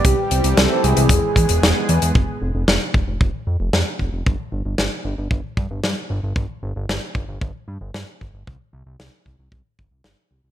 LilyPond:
<<
  \new Staff \with { instrumentName = "Soft synth lead" } { \time 4/4 \key c \major \tempo 4 = 114 g'4 a'8 gis'2 r8 | r1 | r1 | r1 |
r1 | }
  \new Staff \with { instrumentName = "Analog synth pad" } { \time 4/4 \key c \major << { <g c' g'>2 <gis b gis'>2 | r1 | r1 | r1 |
r1 | } \\ { e1 | r1 | r1 | r1 |
r1 | } >> }
  \new Staff \with { instrumentName = "Analog synth bass" } { \clef bass \time 4/4 \key c \major c,16 r16 c,16 c,16 c,16 r16 c,16 c,16 e,,16 r16 e,16 e,,16 e,,16 r16 e,16 e,16 | f,,16 r16 f,,16 f,,16 f,,16 r16 f,,16 f,,16 f,,16 r16 f,16 f,,16 f,16 r16 f,,16 f,,16 | g,,16 r16 g,,16 g,,16 g,,16 r16 g,,16 g,,16 g,,16 r16 g,16 g,,16 g,16 r16 g,,16 g,,16 | g,,16 r16 g,,16 g,,16 g,,16 r16 g,,16 g,,16 g,,16 r16 g,16 g,,16 g,16 r16 g,,16 g,,16 |
c,16 r16 c,16 c,16 c,16 r16 c,16 c,16 c,16 r16 g,,16 c,16 g,,16 r16 c,16 c,16 | }
  \new DrumStaff \with { instrumentName = "Drums" } \drummode { \time 4/4 <hh bd>8 hh16 hh16 <hh sn>8 hh16 hh16 <hh bd>8 <hh bd>16 hh16 <hh sn>8 hh16 hh16 | bd4 sn8 bd8 bd4 sn8 bd8 | bd4 sn4 bd8 bd8 sn4 | bd4 sn8 bd8 bd4 sn8 bd8 |
bd4 sn8 bd8 bd8 bd8 sn4 | }
>>